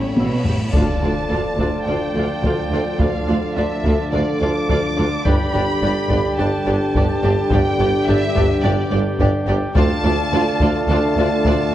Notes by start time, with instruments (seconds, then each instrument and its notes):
Already playing: trombone section A2 G3, french horn section C#4, violin section C#5 B5, cymbal swell
0.16 double bass section A1, cello section B2, viola section E4, taiko high
0.45 double bass section A1, cello section A2, viola section G4, taiko low
0.72 cello section D2, tuba D2, double bass section D2, trombone section D3 F3, pipe organ D4 F4 D5 A5, french horn section D4 A4, viola section D4 F4, violin section A4 D5 A5, taiko, impact
1.01 cello section D2, tuba D2, double bass section D2, violin section A4 D5
1.05 viola section D4 F4
1.29 cello section D2, tuba D2, double bass section D2, viola section D4 F4, violin section A4 D5
1.57 cello section D2, tuba D2, double bass section D2, viola section D4 F4, violin section A4 D5, taiko
1.85 cello section D2, tuba D2, double bass section D2, viola section D4 F4, violin section A4 D5 G5
2.13 cello section D2, tuba D2, double bass section D2, viola section D4, violin section A4 D5
2.18 viola section F4
2.42 cello section D2, tuba D2, double bass section D2, viola section D4 F4, violin section A4 D5, taiko
2.70 cello section D2, tuba D2, double bass section D2, viola section D4 F4, violin section A4 D5
2.99 cello section D2, tuba D2, double bass section D2, viola section D4 F4, violin section A4 D5 F5, taiko
3.27 cello section D2, tuba D2, double bass section D2, viola section D4 F4, violin section A4 D5
3.56 tuba D2, cello section D2, double bass section D2, viola section D4 F4, violin section A4 D5 E5
3.84 tuba D2, cello section D2, double bass section D2, viola section D4 F4, violin section A4 D5, taiko
4.11 tuba D2, cello section D2, double bass section D2, viola section D4 F4, violin section A4 D5
4.40 tuba D2, cello section D2, double bass section D2, viola section D4 F4, violin section A4 D5 D6
4.69 tuba D2, cello section D2, double bass section D2, viola section D4 F4, violin section A4 D5, taiko
4.97 tuba D2, double bass section D2, cello section D2, viola section D4 F4, violin section A4 D5
5.24 tuba G1, double bass section G1, cello section G2, trombone section D3 G3, pipe organ D4 G4 D5 G5, viola section D4 G4, french horn section D4 G4, violin section G4 D5 B5, taiko
5.53 tuba G1, double bass section G1, cello section G2, viola section D4 G4, violin section G4 D5
5.82 tuba G1, double bass section G1, cello section G2, viola section D4 G4, violin section G4 D5
6.10 double bass section G1, tuba G1, cello section G2, viola section D4 G4, violin section G4 D5, taiko
6.38 double bass section G1, tuba G1, cello section G2, viola section D4 G4, violin section G4 D5 A5
6.66 tuba G1, double bass section G1, cello section G2, viola section D4 G4, violin section G4 D5
6.95 double bass section G1, tuba G1, cello section G2, viola section D4 G4, violin section G4 D5, taiko
7.23 tuba G1, double bass section G1, cello section G2, viola section D4 G4, violin section G4 D5
7.51 tuba G1, double bass section G1, cello section G2, viola section D4 G4, violin section G4 D5 G5, taiko
7.79 tuba G1, double bass section G1, cello section G2, viola section D4 G4, violin section G4 D5
8.06 tuba G1, double bass section G1, cello section G2, viola section D4 G4, violin section G4 D5 E5
8.35 tuba G1, double bass section G1, cello section G2, viola section D4 G4, violin section G4 D5, taiko
8.63 tuba G1, double bass section G1, cello section G2, viola section D4 G4, violin section G4 D5
8.90 tuba G1, double bass section G1, cello section G2, viola section D4 G4, violin section G4 D5
9.19 tuba G1, double bass section G1, cello section G2, viola section D4 G4, violin section G4 D5, taiko
9.47 tuba G1, double bass section G1, cello section G2, viola section D4 G4, violin section G4 D5
9.74 tuba D2, double bass section D2, cello section D2, trombone section D3 A3, pipe organ D4 A4 D5 F5, viola section D4 F4, french horn section D4 F4, violin section A4 D5 A5, taiko
10.04 double bass section D2, tuba D2, cello section D2, viola section D4 F4, violin section A4 D5
10.32 cello section D2, tuba D2, double bass section D2, viola section D4 F4, violin section A4 D5
10.60 double bass section D2, tuba D2, cello section D2, viola section D4 F4, violin section A4 D5, taiko
10.87 double bass section D2, tuba D2, cello section D2, viola section D4 F4, violin section A4 D5 A5
11.16 double bass section D2, cello section D2, tuba D2, viola section D4 F4, violin section A4 D5
11.44 double bass section D2, tuba D2, cello section D2, viola section D4 F4, violin section A4 D5, taiko